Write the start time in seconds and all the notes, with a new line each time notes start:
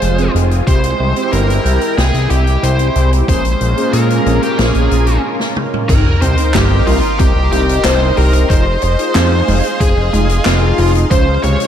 Already playing: G#3 F4 G#4 C5
0.02 F1, closed hi-hat
0.18 C4 F4 G#4, closed hi-hat
0.35 F1, closed hi-hat
0.51 closed hi-hat
0.67 C2 C4 E4 G4 C5 G5, kick, closed hi-hat
0.84 closed hi-hat
1.00 C2
1.16 C4 E4 G4, closed hi-hat
1.33 G1 A#4, closed hi-hat
1.50 closed hi-hat
1.65 C2 C4 E4 G4, closed hi-hat
1.81 closed hi-hat
1.98 C2 G#4, snare, closed hi-hat
2.14 C2, closed hi-hat
2.30 C2 C4 E4 G4, closed hi-hat
2.47 closed hi-hat
2.63 C2 C5, closed hi-hat
2.79 C4 E4 G4, closed hi-hat
2.95 C2, closed hi-hat
3.13 closed hi-hat
3.28 A#1 G#3 A#3 C#4 F4 G#4 A#4 C5, kick, closed hi-hat
3.44 closed hi-hat
3.61 A#1, closed hi-hat
3.77 A#3 C#4 G#4, closed hi-hat
3.93 A#2 A#4, closed hi-hat
4.10 closed hi-hat
4.26 A#1 A#3 C#4 G#4, closed hi-hat
4.43 G4, closed hi-hat
4.59 A#1 G#4, snare, closed hi-hat
4.74 A#1, closed hi-hat
4.91 A#1 A#3 C#4 G#4, closed hi-hat
5.07 closed hi-hat
5.40 snare
5.56 mid tom
5.74 mid tom
5.89 C2 G3 C4 D#4 A#4 D#5 G5 C6, kick, closed hi-hat, crash, sub drop
6.21 C2 C4 C5, closed hi-hat
6.37 C4 D#4 A#4, closed hi-hat
6.54 G1 G3 G4, snare, clap, closed hi-hat
6.87 C2 A#3 C4 D#4 F4 A#4, open hi-hat
7.03 closed hi-hat
7.19 C2 C4 G4, kick, closed hi-hat
7.36 C2
7.52 C2 A#3 C4 D#4 G4 A#4, closed hi-hat
7.69 closed hi-hat
7.84 C2 G3 C5, snare, clap, closed hi-hat
8.01 C4 D#4 A#4
8.17 C2 G4 A#4, open hi-hat
8.33 A#4, closed hi-hat
8.50 F1 D#4 F4 G#4 C5 F5, kick, closed hi-hat
8.82 F1 C5, closed hi-hat
8.99 D#4 F4 G#4, closed hi-hat
9.15 F2 C4, snare, clap, closed hi-hat
9.48 F1 G#3 D#4 F4 G#4, open hi-hat
9.63 closed hi-hat
9.80 F1 G#4, kick, closed hi-hat
9.97 F1
10.13 F1 G#3 D#4 F4 G#4, closed hi-hat
10.29 closed hi-hat
10.45 F1 C4 F4, snare, clap, closed hi-hat
10.62 D#4 F4 G#4
10.78 F1 F4, open hi-hat
10.95 closed hi-hat
11.10 C#2 F3 G#3 C#4 F4 C5, kick, closed hi-hat
11.43 C#2 C3 C#5, closed hi-hat
11.60 C#4 F4 C5, closed hi-hat